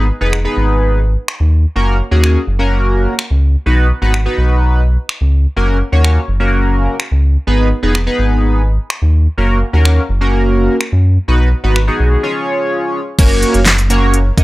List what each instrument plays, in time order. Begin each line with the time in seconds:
Already playing: analog synth bass G#1
0.21 analog synth bass F1, analog polysynth B3 D#4 G#4 B4
0.33 finger snap
0.45 analog polysynth B3 D#4 G#4 B4
0.57 analog synth bass G#1
1.28 finger snap
1.40 analog synth bass D#2
1.76 analog synth bass F#1, analog polysynth A#3 C#4 F#4 A#4
2.11 analog synth bass D#2, analog polysynth A#3 C#4 F#4 G#4
2.24 finger snap
2.47 analog synth bass F#1
2.59 analog polysynth A#3 C#4 F#4 A#4
3.19 finger snap
3.31 analog synth bass C#2
3.66 analog synth bass B1, analog polysynth B3 D#4 F#4 B4
4.02 analog synth bass G#1, analog polysynth B3 D#4 F#4 B4
4.14 finger snap
4.26 analog polysynth B3 D#4 F#4 B4
4.38 analog synth bass B1
5.09 finger snap
5.21 analog synth bass C#2
5.56 analog synth bass F#1, analog polysynth A#3 C#4 F#4 A#4
5.92 analog synth bass D#2, analog polysynth A#3 C#4 F#4 C#5
6.04 finger snap
6.28 analog synth bass F#1
6.40 analog polysynth A#3 C#4 F#4 A#4
7.00 finger snap
7.11 analog synth bass C#2
7.47 analog synth bass G#1, analog polysynth B3 D#4 G#4 B4
7.83 analog synth bass F1, analog polysynth B3 D#4 G#4 B4
7.95 finger snap
8.06 analog polysynth B3 D#4 G#4 B4
8.19 analog synth bass G#1
8.90 finger snap
9.02 analog synth bass D#2
9.38 analog synth bass F#1, analog polysynth A#3 C#4 F#4 A#4
9.73 analog synth bass D#2, analog polysynth A#3 C#4 F#4 A#4
9.85 finger snap
10.09 analog synth bass F#1
10.21 analog polysynth A#3 C#4 F#4 A#4
10.81 finger snap
10.92 analog synth bass F#2
11.28 analog synth bass B1, analog polysynth B3 D#4 F#4 B4
11.63 analog synth bass G#1, analog polysynth B3 D#4 F#4 B4
11.76 finger snap
11.87 analog polysynth B3 D#4 F#4 G#4
12.00 analog synth bass B1
12.23 analog polysynth C#4 F4 G#4 C#5
13.18 analog synth bass F#1, analog polysynth A#3 C#4 F#4 A#4 C#5, kick, closed hi-hat, crash
13.43 closed hi-hat
13.54 analog synth bass F#1, closed hi-hat
13.66 snare, clap, closed hi-hat
13.78 closed hi-hat
13.90 analog polysynth A#3 C#4 F#4 A#4 C#5, closed hi-hat
14.14 closed hi-hat
14.37 analog polysynth A#3 C#4 F#4 A#4 D#5, kick, closed hi-hat